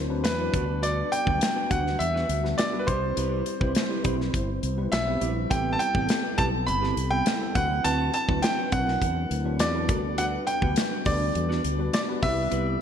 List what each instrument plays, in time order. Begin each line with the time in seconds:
Already playing: fretless electric bass D2, tine electric piano F#3 C4 D4 E4 A#4 C5, grand piano C5
0.09 tine electric piano F#3 C4 D4 E4 B4, muted clean electric guitar stroke
0.24 fretless electric bass E2, grand piano B4, snare, closed hi-hat
0.38 tine electric piano F#3 C4 D4 E4 B4
0.53 fretless electric bass D2, tine electric piano G3 B3 D4 F#4 B4, clean electric guitar D4 F#4 D5, kick, closed hi-hat
0.68 muted clean electric guitar stroke
0.82 clean electric guitar D4 F#4 B4, grand piano D5, closed hi-hat
1.12 grand piano G5, muted clean electric guitar stroke, closed hi-hat
1.25 fretless electric bass D2, tine electric piano F#3 G3 B3 D4 B4, clean electric guitar D4 F#4 B4, kick
1.41 muted clean electric guitar stroke, snare, closed hi-hat
1.56 clean electric guitar D4 F#4 B4
1.69 fretless electric bass D2, tine electric piano G3 B3 D4 F#4 B4, clean electric guitar D4 F#4 B4, grand piano F#5, kick, closed hi-hat
1.85 muted clean electric guitar stroke, snare
1.99 fretless electric bass E2, grand piano E5, muted clean electric guitar stroke, closed hi-hat
2.14 clean electric guitar D4 F#4 B4, snare
2.29 fretless electric bass D2, muted clean electric guitar stroke, closed hi-hat
2.43 tine electric piano G3 B3 D4 F#4 B4, muted clean electric guitar stroke, snare
2.58 grand piano D5, muted clean electric guitar stroke, snare, closed hi-hat
2.72 tine electric piano G3 B3 D4 F#4 B4, muted clean electric guitar stroke
2.79 grand piano B4
2.87 fretless electric bass C2, tine electric piano G3 C4 E4 C5, clean electric guitar E4 G4 B4, grand piano C5, kick, closed hi-hat
3.02 muted clean electric guitar stroke
3.17 fretless electric bass C2, clean electric guitar E4 G4 B4, closed hi-hat
3.46 muted clean electric guitar stroke, closed hi-hat
3.60 fretless electric bass C2, tine electric piano G3 C4 E4 C5, clean electric guitar E4 G4 B4, kick
3.75 snare, closed hi-hat
3.90 clean electric guitar E4 G4 B4
4.03 fretless electric bass B1, tine electric piano G3 C4 E4 C5, clean electric guitar E4 G4 B4, kick, closed hi-hat
4.19 muted clean electric guitar stroke, snare
4.34 fretless electric bass G1, muted clean electric guitar stroke, kick, closed hi-hat
4.48 muted clean electric guitar stroke
4.63 fretless electric bass C2, closed hi-hat
4.77 tine electric piano G3 B3 C4 E4 B4, muted clean electric guitar stroke
4.92 fretless electric bass B1, grand piano E5, snare, closed hi-hat
5.06 tine electric piano G3 B3 C4 E4 B4, muted clean electric guitar stroke
5.21 fretless electric bass A#1, clean electric guitar E4 G4 C5, closed hi-hat
5.35 muted clean electric guitar stroke
5.50 fretless electric bass A1, tine electric piano G3 B3 C4 E4 A4, clean electric guitar C4 G4 B4, grand piano G5, kick, closed hi-hat
5.73 grand piano A5
5.79 grand piano G5, muted clean electric guitar stroke, closed hi-hat
5.94 fretless electric bass A1, tine electric piano G3 B3 C4 E4 A4, clean electric guitar C4 G4 B4, kick
6.09 muted clean electric guitar stroke, snare, closed hi-hat
6.23 clean electric guitar C4 G4 B4
6.37 fretless electric bass B1, tine electric piano G3 B3 C4 E4 A4, clean electric guitar C4 G4 B4, grand piano A5, kick, closed hi-hat
6.52 muted clean electric guitar stroke
6.67 fretless electric bass G1, grand piano B5, muted clean electric guitar stroke, closed hi-hat
6.81 clean electric guitar C4 G4 B4, snare
6.96 fretless electric bass C2, muted clean electric guitar stroke, closed hi-hat
7.10 tine electric piano G3 B3 C4 E4 A4, grand piano G5, muted clean electric guitar stroke
7.25 muted clean electric guitar stroke, snare, closed hi-hat
7.40 tine electric piano G3 B3 C4 E4 A4, muted clean electric guitar stroke
7.55 fretless electric bass D2, tine electric piano F#3 C4 D4 E4 B4, clean electric guitar C4 F#4 B4, grand piano F#5, kick, closed hi-hat
7.70 muted clean electric guitar stroke
7.84 fretless electric bass D2, clean electric guitar C4 F#4 B4, grand piano A5, closed hi-hat
8.14 grand piano A5, closed hi-hat
8.28 fretless electric bass D2, tine electric piano F#3 C4 D4 E4 B4, clean electric guitar C4 F#4 B4, kick
8.42 grand piano G5, snare, closed hi-hat
8.57 clean electric guitar C4 F#4 B4
8.72 fretless electric bass B1, tine electric piano F#3 C4 D4 E4 A#4, clean electric guitar C4 F#4 B4, grand piano F#5, kick, closed hi-hat
8.79 tine electric piano B4
8.87 muted clean electric guitar stroke, snare
9.01 fretless electric bass E2, muted clean electric guitar stroke, kick, closed hi-hat
9.16 muted clean electric guitar stroke
9.31 fretless electric bass D2, closed hi-hat
9.44 tine electric piano F#3 C4 D4 E4 B4, muted clean electric guitar stroke
9.59 fretless electric bass E2, grand piano D5, snare, closed hi-hat
9.74 tine electric piano F#3 C4 D4 E4 B4, muted clean electric guitar stroke
9.88 fretless electric bass D2, tine electric piano G3 B3 D4 F#4 A#4, clean electric guitar D4 F#4 D5, kick, closed hi-hat
9.96 tine electric piano B4
10.04 muted clean electric guitar stroke
10.18 clean electric guitar D4 F#4 B4, grand piano F#5, closed hi-hat
10.47 grand piano G5, muted clean electric guitar stroke, closed hi-hat
10.61 fretless electric bass D2, tine electric piano F#3 G3 B3 D4 B4, clean electric guitar D4 F#4 B4, kick
10.76 muted clean electric guitar stroke, snare, closed hi-hat
10.91 clean electric guitar D4 F#4 B4
11.05 fretless electric bass D2, tine electric piano G3 B3 D4 F#4 A4, clean electric guitar D4 F#4 B4, grand piano D5, kick, open hi-hat
11.13 tine electric piano B4
11.20 muted clean electric guitar stroke
11.34 fretless electric bass E2, muted clean electric guitar stroke, closed hi-hat
11.49 clean electric guitar D4 F#4 B4, snare
11.64 fretless electric bass D2, muted clean electric guitar stroke, closed hi-hat
11.78 tine electric piano G3 B3 D4 F#4 B4, muted clean electric guitar stroke
11.93 grand piano D5, muted clean electric guitar stroke, snare, closed hi-hat
12.08 tine electric piano G3 B3 D4 F#4 B4, muted clean electric guitar stroke
12.22 fretless electric bass C2, tine electric piano G3 B3 C4 D4 B4, clean electric guitar E4 G4 B4, grand piano E5, kick, open hi-hat
12.30 tine electric piano E4
12.37 muted clean electric guitar stroke
12.51 fretless electric bass C2, clean electric guitar E4 G4 B4, closed hi-hat